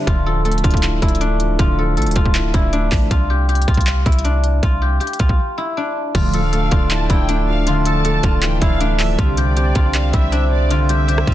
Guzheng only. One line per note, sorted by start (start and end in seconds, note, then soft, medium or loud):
0.00 1.20 D4 medium
0.00 0.13 E4 medium
0.00 1.28 G4 medium
0.07 0.63 F4 medium
0.26 0.44 A4 medium
0.45 1.78 A4 medium
0.64 1.08 F4 medium
1.02 1.65 E4 medium
1.21 2.72 D4 medium
1.59 2.16 F4 loud
1.78 1.97 A4 medium
1.97 4.17 A4 medium
2.16 2.60 F4 medium
2.54 3.17 E4 medium
2.73 4.24 D4 medium
3.11 3.67 F4 medium
3.30 3.48 G4 medium
3.49 4.81 G4 medium
3.68 4.12 F4 medium
4.06 4.69 E4 medium
4.24 5.77 D4 medium
4.63 5.19 F4 medium
4.82 5.00 G4 medium
5.00 7.36 G4 medium
5.19 5.64 F4 medium
5.58 6.21 E4 medium
5.77 7.28 D4 medium
6.15 6.71 F4 medium
6.34 6.52 A4 medium
6.53 7.86 A4 medium
6.71 7.16 F4 medium
7.10 7.73 E4 medium
7.28 8.80 D4 medium
7.67 8.23 F4 medium
7.86 8.04 A4 medium
8.05 10.24 A4 medium
8.24 8.67 F4 medium
8.61 9.25 E4 medium
8.80 10.32 D4 medium
9.19 9.75 F4 medium
9.38 9.56 G4 medium
9.56 10.89 G4 medium
9.76 10.19 F4 medium
10.13 10.77 E4 medium
10.32 11.34 D4 medium
10.71 11.27 F4 loud
10.89 11.08 G4 medium
11.08 11.34 G4 medium
11.27 11.34 F4 medium